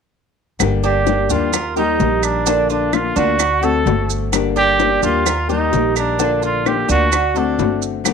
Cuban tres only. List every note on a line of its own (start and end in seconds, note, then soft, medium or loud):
0.84 1.29 D4 medium
1.30 1.53 G4 medium
1.53 1.76 A#4 medium
1.77 2.22 G4 medium
2.23 2.46 A#4 medium
2.46 2.69 D4 medium
2.70 3.15 F4 medium
3.16 3.39 D4 medium
3.39 3.62 F#4 medium
3.63 4.08 A4 medium
4.56 5.01 D4 medium
5.03 5.25 G4 medium
5.26 5.49 A#4 medium
5.49 5.95 G4 medium
5.96 6.19 A#4 medium
6.19 6.42 D4 medium
6.42 6.88 F4 medium
6.89 7.11 D4 medium
7.12 7.35 F#4 medium
7.36 7.81 A4 medium